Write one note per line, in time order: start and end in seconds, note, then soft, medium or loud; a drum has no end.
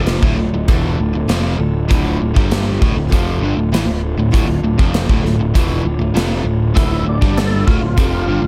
0.00 0.20 F1 medium
0.00 0.22 F2 medium
0.00 0.22 C3 medium
0.00 0.22 F3 loud
0.06 0.37 F3 medium
0.06 0.38 D4 medium
0.06 0.37 F4 medium
0.06 0.35 A4 medium
0.06 snare medium
0.06 closed hi-hat medium
0.22 0.36 D1 medium
0.22 0.37 D2 medium
0.22 0.37 A2 loud
0.22 kick loud
0.36 0.52 D1 medium
0.36 0.53 D2 medium
0.36 0.53 A2 medium
0.36 0.67 D4 soft
0.36 0.68 F4 soft
0.36 0.67 A4 medium
0.53 0.67 D1 medium
0.53 0.69 D2 medium
0.53 0.69 A2 medium
0.68 0.96 E1 medium
0.68 0.98 E2 medium
0.68 0.98 B2 medium
0.68 1.29 D3 medium
0.68 0.99 E3 medium
0.68 1.26 F3 loud
0.68 1.27 D4 medium
0.68 1.28 F4 loud
0.68 1.29 A4 loud
0.68 kick loud
0.68 closed hi-hat medium
0.99 1.13 D1 medium
0.99 1.14 D2 soft
0.99 1.14 A2 medium
1.14 1.28 D1 medium
1.14 1.29 D2 medium
1.14 1.29 A2 medium
1.28 1.57 F1 medium
1.28 1.59 F2 medium
1.28 1.59 C3 medium
1.28 1.59 F3 medium
1.28 1.59 D4 medium
1.28 1.58 F4 medium
1.28 1.56 A4 medium
1.28 snare medium
1.28 closed hi-hat medium
1.58 1.87 D1 medium
1.58 1.84 D2 medium
1.58 1.84 A2 medium
1.58 1.87 D4 soft
1.58 1.88 F4 soft
1.58 1.89 A4 medium
1.89 2.19 D1 medium
1.89 2.19 D2 medium
1.89 2.19 A2 loud
1.89 2.50 D3 medium
1.89 2.20 D3 medium
1.89 2.48 F3 medium
1.89 2.49 D4 medium
1.89 2.49 F4 medium
1.89 2.50 A4 medium
1.89 kick loud
1.89 closed hi-hat medium
2.21 2.35 D1 medium
2.21 2.36 D2 medium
2.21 2.36 A2 medium
2.36 2.78 G1 medium
2.36 2.81 G2 medium
2.36 2.81 D3 medium
2.36 2.81 G3 medium
2.36 kick loud
2.49 2.80 F3 medium
2.49 2.80 D4 medium
2.49 2.79 F4 medium
2.49 2.78 A4 medium
2.49 snare loud
2.49 closed hi-hat medium
2.79 2.94 D1 medium
2.79 2.96 D2 medium
2.79 2.96 A2 loud
2.79 3.08 D4 soft
2.79 3.08 F4 soft
2.79 3.09 A4 medium
2.79 kick loud
2.95 3.10 D1 medium
2.95 3.12 D2 medium
2.95 3.12 A2 medium
3.09 3.40 F1 medium
3.09 3.71 D3 medium
3.09 3.71 F3 medium
3.09 3.71 D4 loud
3.09 3.71 F4 medium
3.09 3.71 A4 medium
3.09 kick loud
3.13 3.42 F2 medium
3.13 3.42 C3 medium
3.13 3.42 F3 medium
3.13 closed hi-hat medium
3.41 3.55 G1 loud
3.41 3.57 G2 medium
3.45 3.57 D3 medium
3.56 3.71 D1 medium
3.56 3.72 D2 medium
3.56 3.71 A2 medium
3.72 3.86 A1 medium
3.72 3.87 A2 medium
3.72 3.87 E3 loud
3.72 4.02 F3 medium
3.72 4.02 D4 medium
3.72 4.02 F4 medium
3.72 4.01 A4 medium
3.72 snare medium
3.72 closed hi-hat medium
3.86 4.15 D1 medium
3.86 4.12 D2 soft
3.86 4.12 A2 medium
4.03 4.30 D4 soft
4.03 4.31 F4 soft
4.03 4.31 A4 soft
4.17 4.31 D1 medium
4.17 4.32 D2 medium
4.17 4.33 A2 medium
4.31 4.47 D1 medium
4.31 4.47 D2 medium
4.31 4.48 A2 medium
4.31 4.93 D3 medium
4.31 4.90 F3 medium
4.31 4.91 D4 medium
4.31 4.92 F4 medium
4.31 4.93 A4 medium
4.31 kick loud
4.31 closed hi-hat medium
4.47 4.61 D1 medium
4.47 4.63 D2 medium
4.47 4.63 A2 medium
4.62 4.77 D1 medium
4.62 4.78 D2 medium
4.62 4.79 A2 medium
4.78 5.07 F1 medium
4.78 5.08 F2 medium
4.78 5.08 C3 medium
4.78 5.09 F3 medium
4.78 kick loud
4.92 5.23 F3 medium
4.92 5.23 D4 medium
4.92 5.23 F4 medium
4.92 5.22 A4 medium
4.92 snare loud
4.92 closed hi-hat medium
5.09 5.22 D1 medium
5.09 5.24 D2 loud
5.09 5.24 A2 medium
5.09 kick medium
5.23 5.37 D1 medium
5.23 5.40 D2 medium
5.23 5.40 A2 medium
5.23 5.54 D4 soft
5.23 5.54 F4 medium
5.23 5.54 A4 medium
5.23 snare soft
5.38 5.53 D1 medium
5.38 5.55 D2 medium
5.38 5.55 A2 medium
5.55 5.83 E1 medium
5.55 5.84 E2 medium
5.55 5.85 B2 medium
5.55 6.15 D3 medium
5.55 5.85 E3 medium
5.55 6.15 F3 loud
5.55 6.15 D4 medium
5.55 6.16 F4 loud
5.55 6.16 A4 loud
5.55 kick loud
5.55 closed hi-hat medium
5.85 5.99 D1 medium
5.85 6.00 D2 medium
5.85 6.01 A2 medium
6.00 6.13 D1 medium
6.00 6.14 D2 medium
6.00 6.14 A2 medium
6.14 6.43 F1 medium
6.14 6.44 F2 medium
6.14 6.44 C3 medium
6.14 6.45 F3 loud
6.14 6.46 F3 medium
6.14 6.46 D4 medium
6.14 6.45 F4 medium
6.14 6.44 A4 medium
6.14 snare medium
6.14 closed hi-hat medium
6.44 6.73 D1 medium
6.44 6.70 D2 medium
6.44 6.70 A2 medium
6.44 6.74 D4 soft
6.44 6.77 F4 soft
6.44 6.74 A4 soft
6.75 7.04 D1 medium
6.75 7.05 D2 medium
6.75 7.05 A2 medium
6.75 7.36 D3 medium
6.75 7.06 D3 loud
6.75 7.35 F3 medium
6.75 7.37 D4 medium
6.75 7.07 E4 medium
6.75 7.37 A4 medium
6.75 kick loud
6.75 closed hi-hat medium
7.05 7.20 D1 medium
7.05 7.21 D2 medium
7.05 7.22 A2 medium
7.05 7.39 D4 medium
7.22 7.64 G1 medium
7.22 7.66 G2 medium
7.22 7.67 D3 medium
7.22 7.67 G3 medium
7.22 kick loud
7.36 7.96 F3 medium
7.36 7.96 D4 medium
7.36 7.97 F4 medium
7.36 7.68 A4 loud
7.36 7.97 A4 medium
7.36 snare loud
7.36 closed hi-hat soft
7.67 7.81 D1 medium
7.67 7.80 D2 loud
7.67 7.81 A2 loud
7.67 8.47 F4 medium
7.67 kick loud
7.82 7.96 D1 medium
7.82 7.97 D2 medium
7.82 7.98 A2 medium
7.97 8.26 F1 medium
7.97 8.27 F2 medium
7.97 8.28 C3 medium
7.97 8.47 D3 medium
7.97 8.47 F3 medium
7.97 8.28 F3 medium
7.97 8.47 D4 medium
7.97 8.47 F4 medium
7.97 8.47 A4 medium
7.97 kick loud
7.97 closed hi-hat medium
8.27 8.42 G1 loud
8.27 8.43 G2 medium
8.27 8.43 D3 medium
8.42 8.47 D1 medium
8.42 8.47 D2 medium
8.42 8.47 A2 medium